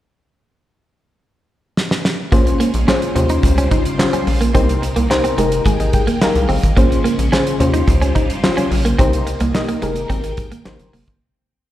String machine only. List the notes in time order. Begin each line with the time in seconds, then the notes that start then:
2.32 C#3 G#3 C#4
3.16 C#3 G3 F4 C5
4.55 C3 A#3 D#4
5.38 D#3 G#3 A#3 G5
6.77 C#3 G#3 C#4
7.60 C#3 G3 F4 C5
8.99 C3 A#3 D#4
9.82 D#3 G#3 G5
10.66 C3